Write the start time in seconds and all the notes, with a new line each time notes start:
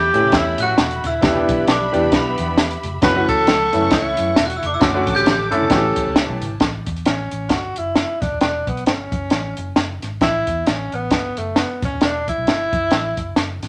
Already playing: G4 A4 E5 B5 G6
0.01 high conga
0.13 A2 E3 A3 C#4 G4, closed hi-hat
0.24 low conga
0.32 E2 E4 E6, kick, snare, closed hi-hat
0.58 A2 F#4 F#6, closed hi-hat, muted conga, high conga
0.78 E1, snare, closed hi-hat, muted conga
0.91 closed hi-hat, high conga
1.03 D#1 E4 E6, snare, closed hi-hat, low conga
1.21 E1 E3 B3 D4 G4 E5 B5, kick, snare, closed hi-hat, muted conga, low conga
1.34 E3 B3 D4 G4
1.49 B1, kick, closed hi-hat, muted conga, high conga
1.67 B1 D4 D6, snare, closed hi-hat, high conga
1.80 high conga
1.92 E2 E3 B3 D4 G4, closed hi-hat, muted conga
2.03 low conga
2.12 B1, kick, snare, closed hi-hat
2.16 B3 B5
2.38 E2, closed hi-hat, muted conga, high conga
2.58 snare, closed hi-hat
2.71 closed hi-hat, high conga
2.83 F1, closed hi-hat, muted conga, low conga
3.01 F#1 E3 A3 C#4 F#4 A4 B4 F#5 C#6 B6, kick, snare, closed hi-hat, low conga
3.15 E3 A3 C#4 F#4
3.28 C#2 A4 A6, kick, closed hi-hat, muted conga, high conga
3.47 C#2, snare, closed hi-hat, muted conga, high conga
3.59 high conga
3.73 F#2 E3 A3 C#4 E4, closed hi-hat, muted conga
3.82 low conga
3.91 C#2 E4 E6, kick, snare, closed hi-hat
4.17 F#2, closed hi-hat, high conga
4.36 E1, snare, closed hi-hat
4.46 F#4 F#6, high conga
4.50 closed hi-hat
4.56 E4 E6
4.62 F1 D6, closed hi-hat, low conga
4.67 D4
4.74 E4 E6
4.80 F#1 D3 A3 C#4 F#4 A4 A5 D6 F#6, kick, snare, closed hi-hat, low conga
4.94 D3 A3 C#4 F#4
5.07 A1, kick, closed hi-hat, muted conga, high conga
5.15 G4 G6, closed hi-hat
5.26 A1, snare, closed hi-hat, muted conga, high conga
5.39 high conga
5.51 F#2 D3 A3 C#4 E4 A4 A6, closed hi-hat
5.61 low conga
5.69 A1 E3 A3 C#4 E4 F#4 C#5 A5, kick, snare, closed hi-hat
5.76 G4
5.96 muted fingered electric bass stroke, kick, closed hi-hat, muted conga, high conga
6.07 C#2
6.16 snare, closed hi-hat
6.29 B1, high conga
6.42 G#1, closed hi-hat, muted conga, low conga
6.60 A1, kick, snare, closed hi-hat
6.86 E2, kick, closed hi-hat
6.96 closed hi-hat
7.05 A1 C#4, snare, closed hi-hat
7.31 A1, closed hi-hat
7.49 G1 F#4, kick, snare, closed hi-hat
7.76 F#1 E4, closed hi-hat
7.96 snare, closed hi-hat
8.21 E1 D4, kick, snare, closed hi-hat
8.32 D#1
8.41 E1 D4, snare, closed hi-hat
8.67 B1 B3, kick, closed hi-hat
8.77 closed hi-hat
8.86 G1 C#4, snare, closed hi-hat
9.12 F#1, kick, closed hi-hat
9.30 A1, snare, closed hi-hat
9.57 F#1, closed hi-hat
9.76 F#1, snare, closed hi-hat
10.02 G#1, snare, closed hi-hat
10.21 A1 E4, kick, snare, closed hi-hat
10.47 E2, kick, closed hi-hat
10.67 A1 C#4, snare, closed hi-hat
10.92 A1 B3, closed hi-hat
11.11 G1, kick, snare, closed hi-hat
11.37 F#1 A3, closed hi-hat
11.56 B3, snare, closed hi-hat
11.82 E1 C#4, kick, snare, closed hi-hat
11.93 D#1
12.01 E1 D4, snare, closed hi-hat
12.28 E4, kick, closed hi-hat
12.38 B1
12.46 G1, snare, closed hi-hat
12.73 F#1, kick, closed hi-hat
12.91 A1, snare, closed hi-hat
13.17 F#1, kick, closed hi-hat
13.36 F#1, snare, closed hi-hat
13.62 G#1, snare, closed hi-hat